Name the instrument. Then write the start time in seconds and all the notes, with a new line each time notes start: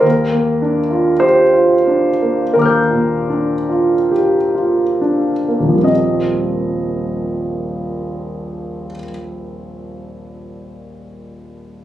grand piano
0.01 D#2 A#4
0.32 A#3
0.62 D4
0.91 F4
1.20 G4 C5
1.54 F4
1.87 D4
2.22 A#3
2.54 D#2 A#4 A#5
2.59 D6 F6
2.65 G6
2.91 A#2
3.29 D4
3.69 F4
4.11 G4
4.55 F4
5.01 D4
5.48 A#3
5.59 D#1
5.64 A#1
5.69 F3 G3
5.77 A#3
5.83 C4 D#5